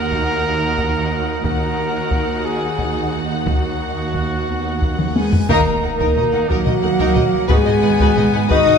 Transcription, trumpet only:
Already playing: A#4
1.45 A#4
2.45 G#4
3.46 F#4
5.16 B3
5.50 D#4
6.50 A#3
7.49 B3
8.51 F#4

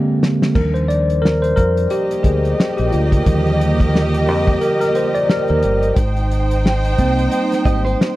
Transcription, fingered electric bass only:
0.56 D#2
1.58 F2
2.24 D2
2.79 A#1
2.94 D2
3.27 D#2
4.28 F2
5.50 D#2
5.64 G1
5.97 G#1
6.99 C2
7.66 G#1

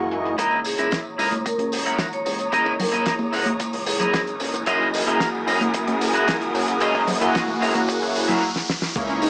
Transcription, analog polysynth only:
0.11 A#3 E4 F#4 G#4 D#5
0.38 A#3 E4 G#4 C#5 D#5
0.77 A#3 E4 G#4
2.52 A#3 E4 G#4 C#5 D#5
2.92 A#3 E4 G#4
4.66 A#3 E4 F#4 G#4 D#5
5.06 A#3 E4 F#4 G#4 F#5
6.81 A#3 E4 F#4 G#4 D#5
7.20 A#3 E4 F#4 G#4 F#5
8.95 A#3 D#4 E4 G#4 C#5

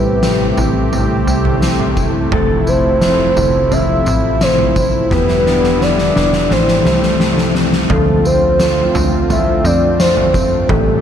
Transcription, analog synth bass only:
Already playing: A1
0.58 A1
1.27 C2
2.32 F1
3.37 F1
4.07 A1
5.11 E1
6.17 E1
6.51 A1
6.86 C2
7.90 D2
8.95 D2
9.64 F2
10.69 A1

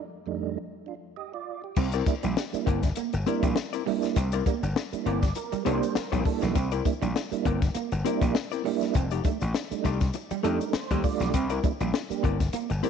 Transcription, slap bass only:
1.77 C2
2.24 A#1
2.54 muted slap bass stroke
2.67 G1
3.14 G1
3.43 A#1
4.17 C2
4.63 G1
4.93 muted slap bass stroke
5.06 G1
5.53 muted slap bass stroke
5.66 C2
5.96 muted slap bass stroke
6.12 A#1
6.43 B1
6.56 C2
7.02 A#1
7.32 muted slap bass stroke
7.45 G1
7.75 muted slap bass stroke
7.92 G1
8.22 A#1
8.95 F1
9.42 A1
9.72 muted slap bass stroke
9.85 C2
10.31 muted slap bass stroke
10.44 F2
10.74 muted slap bass stroke
10.91 D#2
11.20 B1
11.34 C2
11.80 A#1
12.10 muted slap bass stroke
12.24 G1
12.70 G1

